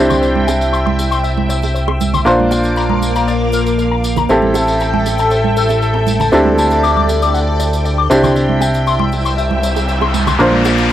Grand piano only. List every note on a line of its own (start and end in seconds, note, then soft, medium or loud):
0.00 2.22 C4 medium
0.00 2.23 D4 medium
0.00 2.23 E4 medium
0.00 2.23 G4 medium
2.25 4.26 A#3 medium
2.25 4.26 D4 medium
2.25 4.26 F4 medium
2.25 4.27 C5 medium
4.29 6.30 C4 medium
4.29 6.30 E4 medium
4.29 6.30 G4 medium
4.29 6.30 A4 medium
6.32 8.07 C4 medium
6.32 8.08 D4 medium
6.32 8.08 E4 medium
6.32 8.08 G4 medium
6.32 8.08 A4 medium
8.10 10.36 C4 medium
8.10 10.36 D4 medium
8.10 10.37 E4 medium
8.10 10.37 G4 medium
10.39 10.93 A#3 medium
10.39 10.93 D4 medium
10.39 10.93 F4 medium
10.39 10.93 C5 medium